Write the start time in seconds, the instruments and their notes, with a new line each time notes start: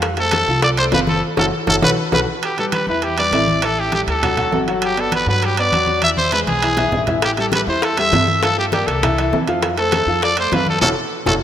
Already playing: upright bass F2, grand piano F3 F4 F5
0.02 high bongo, high conga, high timbale
0.17 grand piano A3 A4 C5, trumpet A4, high bongo, high conga, high timbale
0.31 high bongo, high conga, high timbale
0.47 upright bass C2, grand piano F3 F4 F5, high bongo, high conga
0.62 trumpet D5, high bongo, high conga, high timbale
0.77 grand piano A3 A4 C5, trumpet C5, high conga, high timbale
0.92 upright bass F#1, grand piano F3 F4 F5, trumpet B4, high bongo, low bongo, high conga, high timbale, low timbale
1.07 trumpet A4, high bongo, high conga
1.37 upright bass F#1, grand piano E4 F#4 A4, trumpet A4, high bongo, high conga, high timbale
1.67 upright bass F#1, grand piano E4 F#4 A4, trumpet A4, high bongo, high conga, high timbale
1.82 upright bass B1, grand piano F#4 A4 B4, trumpet B4, high bongo, high conga, high timbale
2.12 upright bass B1, grand piano F#4 A4 B4, trumpet B4, high bongo, high conga, high timbale
2.43 trumpet G4, high conga, high timbale
2.58 grand piano G3 G4 B4, trumpet A4, high conga, high timbale
2.72 trumpet B4, high conga, high timbale
2.87 upright bass E2, grand piano E3 E4 E5, trumpet B4, high conga
3.02 trumpet G4, high conga, high timbale
3.18 grand piano G3 G4 B4, trumpet D5, high conga, high timbale
3.31 upright bass A1, grand piano E3 E4 E5, high conga, high timbale, low timbale
3.48 high conga
3.62 grand piano E3 E4 E5, trumpet A4, high conga, high timbale
3.78 trumpet G4, high conga
3.92 grand piano G3 G4 A4, trumpet G4, high conga, high timbale
4.07 upright bass D2, trumpet A4, high conga, high timbale
4.22 grand piano F#3 F#4 F#5, high conga, low conga, high timbale
4.37 grand piano F#3 F#4 F#5, high conga, low conga, high timbale
4.51 upright bass G1, grand piano F#3 F#4 F#5, high conga, low timbale
4.68 grand piano F#3 F#4 F#5, high timbale
4.82 trumpet G4, high conga, high timbale
4.97 grand piano B3 B4 D5, trumpet A4, high conga, high timbale
5.12 trumpet B4, high conga, high timbale
5.26 upright bass G2, grand piano F#3 F#4 F#5, trumpet B4, high conga
5.42 trumpet G4, high conga, high timbale
5.57 grand piano B3 B4 D5, trumpet D5, high conga, high timbale
5.72 upright bass E2, grand piano F#3 F#4 F#5, high conga, high timbale
5.87 high conga
6.02 grand piano E3 E4 E5, trumpet E5, high conga, high timbale
6.17 trumpet C5, high conga
6.32 grand piano G#3 G#4 B4, trumpet B4, high conga, high timbale
6.47 upright bass B1, trumpet G#4, high conga, high timbale
6.62 grand piano E3 E4 E5, high timbale
6.77 grand piano E3 E4 E5, low conga, high timbale
6.92 upright bass A1, grand piano E3 E4 E5, low conga
7.07 grand piano E3 E4 E5, low conga, high timbale
7.22 trumpet G4, high bongo, high conga, high timbale
7.37 grand piano G3 G4 A4, trumpet A4, high bongo, high conga, high timbale
7.52 trumpet B4, high bongo, high conga, high timbale
7.67 upright bass E2, grand piano E3 E4 E5, trumpet C5, high bongo, high conga
7.82 trumpet A4, high bongo, high conga, high timbale
7.97 grand piano G3 G4 A4, trumpet E5, high conga, high timbale
8.12 upright bass G2, grand piano E3 E4 E5, high bongo, low bongo, high conga, high timbale, low timbale
8.27 high bongo, high conga
8.43 grand piano F3 F4 F5, trumpet A4, high bongo, high conga, high timbale
8.57 trumpet G4, high bongo, high conga
8.72 grand piano A#3 A#4 D5, trumpet G4, high bongo, high conga, high timbale
8.87 upright bass C2, trumpet A4, high bongo, high conga, high timbale
9.03 grand piano E3 E4 E5, high bongo, high conga, low conga, high timbale
9.18 grand piano E3 E4 E5, high conga, high timbale
9.32 upright bass F2, grand piano E3 E4 E5, high bongo, low bongo, high conga, low timbale
9.48 grand piano F3 F4 F5, high bongo, high conga, high timbale
9.62 high bongo, high conga, high timbale
9.77 grand piano A3 A4 C5, trumpet A4, high bongo, high conga, high timbale
9.92 high bongo, high conga, high timbale
10.06 upright bass F2, grand piano F3 F4 F5, high bongo, high conga
10.22 trumpet D5, high bongo, high timbale
10.37 grand piano A3 A4 C5, trumpet C5, high conga, high timbale
10.52 upright bass F#2, grand piano F3 F4 F5, trumpet B4, high bongo, low bongo, high conga, high timbale, low timbale
10.67 trumpet A4, high bongo, high conga
10.82 upright bass F#1, grand piano E4 F#4 A4, trumpet A4, low bongo, low conga, high timbale
11.26 upright bass F#1, grand piano E4 F#4 A4, trumpet A4, low bongo, low conga, high timbale